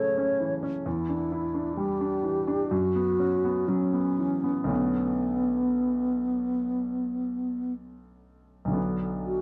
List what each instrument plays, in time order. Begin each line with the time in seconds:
Already playing: grand piano C#3 E3 A3 C#4 G#4, alto flute C#5
0.18 grand piano C#4
0.40 grand piano E3
0.63 grand piano C#4
0.85 grand piano E2, alto flute E4
1.09 grand piano D4
1.32 grand piano E4
1.54 grand piano D4
1.77 grand piano G3, alto flute G4
2.01 grand piano D4
2.23 grand piano E3
2.47 grand piano D4
2.71 grand piano F#2, alto flute F#4
2.95 grand piano B3
3.19 grand piano C#4
3.44 grand piano B3
3.68 grand piano F#3, alto flute C#4
3.93 grand piano B3
4.18 grand piano E3
4.43 grand piano B3
4.64 grand piano B1 D3 A3 B3
4.68 alto flute B3, grand piano C#4
8.65 grand piano B1 D3
8.70 grand piano F#3 B3
8.75 grand piano D4
9.25 alto flute F#4